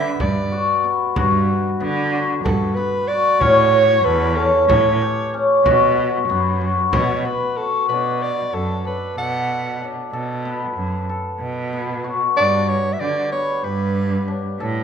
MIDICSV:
0, 0, Header, 1, 5, 480
1, 0, Start_track
1, 0, Key_signature, 2, "minor"
1, 0, Tempo, 640342
1, 873, Time_signature, 7, 3, 24, 8
1, 11121, End_track
2, 0, Start_track
2, 0, Title_t, "Soprano saxophone"
2, 0, Program_c, 0, 64
2, 0, Note_on_c, 0, 76, 83
2, 151, Note_off_c, 0, 76, 0
2, 155, Note_on_c, 0, 74, 66
2, 665, Note_off_c, 0, 74, 0
2, 1832, Note_on_c, 0, 69, 85
2, 2061, Note_on_c, 0, 71, 86
2, 2073, Note_off_c, 0, 69, 0
2, 2305, Note_on_c, 0, 74, 93
2, 2316, Note_off_c, 0, 71, 0
2, 2553, Note_on_c, 0, 73, 104
2, 2564, Note_off_c, 0, 74, 0
2, 3032, Note_on_c, 0, 71, 90
2, 3043, Note_off_c, 0, 73, 0
2, 3269, Note_on_c, 0, 69, 78
2, 3280, Note_off_c, 0, 71, 0
2, 3504, Note_off_c, 0, 69, 0
2, 3508, Note_on_c, 0, 73, 76
2, 4023, Note_off_c, 0, 73, 0
2, 5197, Note_on_c, 0, 73, 72
2, 5434, Note_on_c, 0, 71, 74
2, 5445, Note_off_c, 0, 73, 0
2, 5674, Note_on_c, 0, 69, 73
2, 5685, Note_off_c, 0, 71, 0
2, 5907, Note_off_c, 0, 69, 0
2, 5911, Note_on_c, 0, 71, 72
2, 6161, Note_on_c, 0, 74, 83
2, 6172, Note_off_c, 0, 71, 0
2, 6402, Note_on_c, 0, 69, 71
2, 6413, Note_off_c, 0, 74, 0
2, 6637, Note_off_c, 0, 69, 0
2, 6646, Note_on_c, 0, 71, 69
2, 6863, Note_off_c, 0, 71, 0
2, 6882, Note_on_c, 0, 78, 84
2, 7387, Note_off_c, 0, 78, 0
2, 9270, Note_on_c, 0, 74, 91
2, 9508, Note_on_c, 0, 73, 80
2, 9519, Note_off_c, 0, 74, 0
2, 9691, Note_on_c, 0, 76, 62
2, 9702, Note_off_c, 0, 73, 0
2, 9741, Note_on_c, 0, 74, 79
2, 9752, Note_off_c, 0, 76, 0
2, 9980, Note_off_c, 0, 74, 0
2, 9985, Note_on_c, 0, 73, 75
2, 10226, Note_on_c, 0, 71, 69
2, 10237, Note_off_c, 0, 73, 0
2, 10767, Note_off_c, 0, 71, 0
2, 11121, End_track
3, 0, Start_track
3, 0, Title_t, "Hammered dulcimer"
3, 0, Program_c, 1, 15
3, 0, Note_on_c, 1, 59, 62
3, 0, Note_on_c, 1, 61, 73
3, 0, Note_on_c, 1, 67, 64
3, 389, Note_on_c, 1, 66, 71
3, 434, Note_off_c, 1, 67, 0
3, 627, Note_off_c, 1, 59, 0
3, 630, Note_on_c, 1, 59, 62
3, 870, Note_off_c, 1, 66, 0
3, 873, Note_on_c, 1, 66, 81
3, 874, Note_off_c, 1, 61, 0
3, 1349, Note_off_c, 1, 59, 0
3, 1352, Note_on_c, 1, 59, 79
3, 1591, Note_off_c, 1, 66, 0
3, 1594, Note_on_c, 1, 66, 62
3, 2072, Note_off_c, 1, 59, 0
3, 2075, Note_on_c, 1, 59, 72
3, 2314, Note_off_c, 1, 66, 0
3, 2317, Note_on_c, 1, 66, 69
3, 2557, Note_on_c, 1, 61, 85
3, 3036, Note_on_c, 1, 69, 74
3, 3275, Note_off_c, 1, 61, 0
3, 3278, Note_on_c, 1, 61, 64
3, 3760, Note_on_c, 1, 67, 71
3, 3805, Note_off_c, 1, 66, 0
3, 3998, Note_off_c, 1, 61, 0
3, 4001, Note_on_c, 1, 61, 62
3, 4241, Note_on_c, 1, 66, 91
3, 4286, Note_off_c, 1, 67, 0
3, 4716, Note_off_c, 1, 59, 0
3, 4719, Note_on_c, 1, 59, 74
3, 4953, Note_off_c, 1, 66, 0
3, 4956, Note_on_c, 1, 66, 57
3, 5230, Note_off_c, 1, 69, 0
3, 5431, Note_off_c, 1, 59, 0
3, 5434, Note_on_c, 1, 59, 68
3, 5677, Note_off_c, 1, 66, 0
3, 5680, Note_on_c, 1, 66, 62
3, 5918, Note_on_c, 1, 62, 72
3, 5963, Note_off_c, 1, 61, 0
3, 6397, Note_on_c, 1, 69, 63
3, 6631, Note_off_c, 1, 62, 0
3, 6634, Note_on_c, 1, 62, 57
3, 6874, Note_off_c, 1, 69, 0
3, 6877, Note_on_c, 1, 69, 70
3, 7352, Note_off_c, 1, 62, 0
3, 7355, Note_on_c, 1, 62, 57
3, 7593, Note_off_c, 1, 69, 0
3, 7596, Note_on_c, 1, 69, 80
3, 7832, Note_off_c, 1, 59, 0
3, 7835, Note_on_c, 1, 59, 71
3, 8115, Note_off_c, 1, 66, 0
3, 8312, Note_off_c, 1, 69, 0
3, 8315, Note_on_c, 1, 69, 62
3, 8788, Note_off_c, 1, 59, 0
3, 8791, Note_on_c, 1, 59, 65
3, 9027, Note_on_c, 1, 66, 65
3, 9265, Note_off_c, 1, 62, 0
3, 9268, Note_on_c, 1, 62, 82
3, 9750, Note_on_c, 1, 67, 73
3, 9795, Note_off_c, 1, 66, 0
3, 9985, Note_off_c, 1, 59, 0
3, 9988, Note_on_c, 1, 59, 58
3, 10222, Note_off_c, 1, 67, 0
3, 10225, Note_on_c, 1, 67, 66
3, 10510, Note_off_c, 1, 69, 0
3, 10700, Note_off_c, 1, 62, 0
3, 10703, Note_on_c, 1, 62, 62
3, 10946, Note_on_c, 1, 69, 77
3, 11121, Note_off_c, 1, 59, 0
3, 11121, Note_off_c, 1, 62, 0
3, 11121, Note_off_c, 1, 67, 0
3, 11121, Note_off_c, 1, 69, 0
3, 11121, End_track
4, 0, Start_track
4, 0, Title_t, "Cello"
4, 0, Program_c, 2, 42
4, 146, Note_on_c, 2, 43, 78
4, 347, Note_off_c, 2, 43, 0
4, 871, Note_on_c, 2, 43, 88
4, 1270, Note_off_c, 2, 43, 0
4, 1353, Note_on_c, 2, 50, 85
4, 1752, Note_off_c, 2, 50, 0
4, 1833, Note_on_c, 2, 43, 72
4, 2033, Note_off_c, 2, 43, 0
4, 2554, Note_on_c, 2, 45, 81
4, 2953, Note_off_c, 2, 45, 0
4, 3034, Note_on_c, 2, 40, 97
4, 3432, Note_off_c, 2, 40, 0
4, 3511, Note_on_c, 2, 45, 85
4, 3712, Note_off_c, 2, 45, 0
4, 4232, Note_on_c, 2, 47, 83
4, 4631, Note_off_c, 2, 47, 0
4, 4711, Note_on_c, 2, 42, 87
4, 5110, Note_off_c, 2, 42, 0
4, 5190, Note_on_c, 2, 47, 77
4, 5391, Note_off_c, 2, 47, 0
4, 5913, Note_on_c, 2, 47, 68
4, 6310, Note_off_c, 2, 47, 0
4, 6394, Note_on_c, 2, 42, 64
4, 6592, Note_off_c, 2, 42, 0
4, 6871, Note_on_c, 2, 47, 70
4, 7467, Note_off_c, 2, 47, 0
4, 7590, Note_on_c, 2, 47, 70
4, 7988, Note_off_c, 2, 47, 0
4, 8067, Note_on_c, 2, 42, 69
4, 8268, Note_off_c, 2, 42, 0
4, 8544, Note_on_c, 2, 47, 78
4, 9142, Note_off_c, 2, 47, 0
4, 9264, Note_on_c, 2, 43, 83
4, 9664, Note_off_c, 2, 43, 0
4, 9746, Note_on_c, 2, 50, 68
4, 9946, Note_off_c, 2, 50, 0
4, 10225, Note_on_c, 2, 43, 81
4, 10822, Note_off_c, 2, 43, 0
4, 10942, Note_on_c, 2, 45, 78
4, 11121, Note_off_c, 2, 45, 0
4, 11121, End_track
5, 0, Start_track
5, 0, Title_t, "Frame drum"
5, 150, Note_on_c, 9, 64, 56
5, 225, Note_off_c, 9, 64, 0
5, 871, Note_on_c, 9, 64, 62
5, 946, Note_off_c, 9, 64, 0
5, 1361, Note_on_c, 9, 64, 19
5, 1435, Note_off_c, 9, 64, 0
5, 1841, Note_on_c, 9, 64, 59
5, 1916, Note_off_c, 9, 64, 0
5, 2557, Note_on_c, 9, 64, 55
5, 2632, Note_off_c, 9, 64, 0
5, 3046, Note_on_c, 9, 64, 19
5, 3121, Note_off_c, 9, 64, 0
5, 3520, Note_on_c, 9, 64, 66
5, 3594, Note_off_c, 9, 64, 0
5, 4241, Note_on_c, 9, 64, 62
5, 4316, Note_off_c, 9, 64, 0
5, 4483, Note_on_c, 9, 64, 20
5, 4558, Note_off_c, 9, 64, 0
5, 4716, Note_on_c, 9, 64, 20
5, 4791, Note_off_c, 9, 64, 0
5, 5194, Note_on_c, 9, 64, 66
5, 5269, Note_off_c, 9, 64, 0
5, 11121, End_track
0, 0, End_of_file